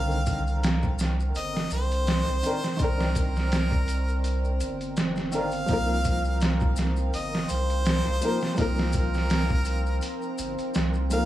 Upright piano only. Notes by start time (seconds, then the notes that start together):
Already playing: D3 D#3 C4 A#4
2.43 D#3 C4 D4 A#4
2.77 D#3 C4
2.82 D4 A#4
5.31 D#3 C4 D4 A#4
5.66 F3 A#3
5.71 D#4 A#4
8.21 F3 A#3 D#4 A#4
8.54 F3 A#3
8.59 D#4 A#4
11.10 F3 A#3 D#4 A#4